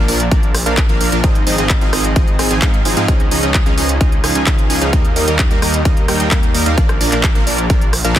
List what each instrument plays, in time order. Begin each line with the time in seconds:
0.08 detuned saw bass A#1, supersaw synth F3 A#3 D4 A#4 D5, open hi-hat
0.20 closed hi-hat
0.31 detuned saw bass A#1, supersaw synth F3 A#3 D4 A#4 D5, kick, closed hi-hat
0.43 closed hi-hat
0.55 cross-stick, open hi-hat
0.66 detuned saw bass A#1, supersaw synth F3 A#3 D4 A#4 F5, closed hi-hat
0.77 kick, clap, closed hi-hat
0.89 detuned saw bass A#1, supersaw synth F3 A#3 D4 A#4 F5, closed hi-hat
1.01 detuned saw bass A#1, supersaw synth F3 A#3 D4 A#4 F5, open hi-hat
1.12 detuned saw bass A#1, supersaw synth F3 A#3 D4 A#4 F5, closed hi-hat
1.24 detuned saw bass G#1, supersaw synth F3 C4 D#4 G#4 D#5, kick, closed hi-hat
1.35 closed hi-hat
1.47 detuned saw bass G#1, supersaw synth F3 C4 D#4 G#4 D#5, open hi-hat
1.58 detuned saw bass G#1, supersaw synth F3 C4 D#4 G#4 D#5, closed hi-hat
1.70 kick, clap, closed hi-hat
1.81 detuned saw bass G#1, supersaw synth F3 C4 D#4 G#4 F5, closed hi-hat
1.93 detuned saw bass G#1, supersaw synth F3 C4 D#4 G#4 D#5, cross-stick, open hi-hat
2.04 closed hi-hat
2.16 detuned saw bass G#1, supersaw synth F3 C4 D#4 G#4 D#5, kick, closed hi-hat
2.28 closed hi-hat
2.39 detuned saw bass G#1, supersaw synth F3 C4 D#4 G#4 G#5, cross-stick, open hi-hat
2.51 detuned saw bass G#1, supersaw synth F3 C4 D#4 G#4 G#5, closed hi-hat
2.62 detuned saw bass G#2, supersaw synth F3 D#4 G#4 F5, kick, clap, closed hi-hat
2.74 closed hi-hat
2.85 detuned saw bass G#1, supersaw synth F3 C4 D#4 G#4 G#5, open hi-hat
2.97 detuned saw bass G#2, supersaw synth F3 C4 D#4 G#4 F5, closed hi-hat
3.08 detuned saw bass C#2, supersaw synth F3 C#4 D#4 G#4 D#5, kick, closed hi-hat
3.20 closed hi-hat
3.31 detuned saw bass C#2, supersaw synth F3 C#4 D#4 G#4 D#5, open hi-hat
3.43 detuned saw bass C#2, supersaw synth F3 C#4 D#4 G#4 D#5, closed hi-hat
3.54 kick, clap, closed hi-hat
3.66 detuned saw bass C#2, supersaw synth F3 C#4 D#4 G#4 F5, closed hi-hat
3.78 detuned saw bass C#2, supersaw synth F3 C#4 D#4 G#4 D#5, open hi-hat
3.89 closed hi-hat
4.01 detuned saw bass C#2, supersaw synth F3 C#4 D#4 G#4 D#5, kick, closed hi-hat
4.12 closed hi-hat
4.24 detuned saw bass C#2, supersaw synth F3 C#4 D#4 G#4 G#5, cross-stick, open hi-hat
4.35 detuned saw bass C#2, supersaw synth F3 C#4 D#4 G#4 G#5, closed hi-hat
4.47 detuned saw bass C#2, supersaw synth F3 C#4 D#4 F5, kick, clap, closed hi-hat
4.58 closed hi-hat
4.70 detuned saw bass C#2, supersaw synth F3 C#4 D#4 G#4 G#5, open hi-hat
4.81 detuned saw bass C#2, supersaw synth F3 C#4 D#4 G#4 F5, closed hi-hat
4.93 detuned saw bass D#2, supersaw synth G3 A#3 D#4 A#4 D#5, kick, closed hi-hat
5.05 closed hi-hat
5.16 detuned saw bass D#2, supersaw synth G3 A#3 D#4 A#4 D#5, open hi-hat
5.28 detuned saw bass D#2, supersaw synth G3 A#3 D#4 A#4 D#5, closed hi-hat
5.39 kick, clap, closed hi-hat
5.51 detuned saw bass D#2, supersaw synth G3 A#3 D#4 A#4 F5, closed hi-hat
5.62 detuned saw bass D#2, supersaw synth G3 A#3 D#4 A#4 D#5, cross-stick, open hi-hat
5.74 closed hi-hat
5.85 detuned saw bass D#2, supersaw synth G3 A#3 D#4 A#4 D#5, kick, closed hi-hat
5.97 closed hi-hat
6.08 detuned saw bass D#2, supersaw synth G3 A#3 D#4 A#4 G5, cross-stick, open hi-hat
6.20 detuned saw bass D#2, supersaw synth G3 A#3 D#4 A#4 G5, closed hi-hat
6.31 detuned saw bass D#2, supersaw synth G3 A#3 D#4 A#4, kick, clap, closed hi-hat
6.43 closed hi-hat
6.54 detuned saw bass D#2, supersaw synth G3 A#3 D#4 A#4 G5, open hi-hat
6.66 detuned saw bass D#2, supersaw synth G3 A#3 D#4 A#4 F5, closed hi-hat
6.78 detuned saw bass A#1, supersaw synth F3 A#3 D4 A#4 D5, kick, closed hi-hat
6.89 cross-stick, closed hi-hat
7.01 detuned saw bass A#1, supersaw synth F3 A#3 D4 A#4 D5, open hi-hat
7.12 detuned saw bass A#1, supersaw synth F3 A#3 D4 A#4 D5, clap, closed hi-hat
7.24 kick, clap, closed hi-hat
7.35 detuned saw bass A#1, supersaw synth F3 A#3 D4 A#4 F5, closed hi-hat
7.47 detuned saw bass A#1, supersaw synth F3 A#3 D4 A#4 D5, open hi-hat
7.58 closed hi-hat
7.70 detuned saw bass A#1, supersaw synth F3 A#3 D4 A#4 D5, kick, closed hi-hat
7.81 closed hi-hat
7.93 cross-stick, open hi-hat
8.04 detuned saw bass A#1, supersaw synth F3 A#3 D4 A#4 F5, closed hi-hat
8.16 kick, clap, closed hi-hat